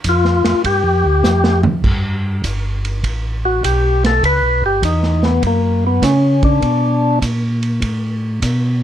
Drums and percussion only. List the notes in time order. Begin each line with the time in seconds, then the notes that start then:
0.04 kick, hi-hat pedal, ride
0.25 snare
0.44 snare, ride
0.64 kick, ride
1.24 snare, hi-hat pedal
1.44 snare
1.63 floor tom
1.84 kick, crash
2.44 kick, hi-hat pedal, ride
2.85 ride
3.04 kick, ride
3.63 kick, hi-hat pedal, ride
4.04 snare, ride
4.23 kick, ride
4.83 kick, hi-hat pedal, ride
5.03 snare
5.23 snare
5.42 kick, ride
6.02 kick, snare, hi-hat pedal, ride
6.43 kick, ride
6.62 kick, ride
7.22 kick, hi-hat pedal, ride
7.63 ride
7.82 kick, ride
8.42 kick, hi-hat pedal, ride